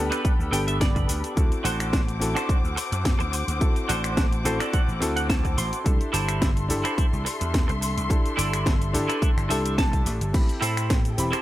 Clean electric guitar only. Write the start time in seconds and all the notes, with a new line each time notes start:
0.11 D4 G4 A4 B4
0.51 G5, muted clean electric guitar stroke
0.67 E5, muted clean electric guitar stroke
0.81 D5
0.95 muted clean electric guitar stroke
1.08 muted clean electric guitar stroke
1.64 D4 F#4 A4 C5
2.35 D4 F#4 A4 C5
2.76 muted clean electric guitar stroke
2.91 muted clean electric guitar stroke
3.19 muted clean electric guitar stroke
3.32 muted clean electric guitar stroke
3.89 D4 F#4 A4 C5
4.46 C5
4.59 D4 F#4 A4 D5
4.74 F#5
5.00 muted clean electric guitar stroke
5.16 F#5, muted clean electric guitar stroke
5.29 A5
5.44 muted clean electric guitar stroke
5.57 C6, muted clean electric guitar stroke
6.13 E4 G4 A4 C5
6.84 E4 G4 A4 C5
7.25 muted clean electric guitar stroke
7.40 muted clean electric guitar stroke
7.68 muted clean electric guitar stroke
7.81 muted clean electric guitar stroke
8.37 E4 G4 A4 D5
9.08 E4 G4 A4 B4
9.49 E5, muted clean electric guitar stroke
9.64 muted clean electric guitar stroke
9.78 A5
9.92 muted clean electric guitar stroke
10.05 muted clean electric guitar stroke
10.61 E4 G4 A4 C5
11.32 E4 G4 A4 C5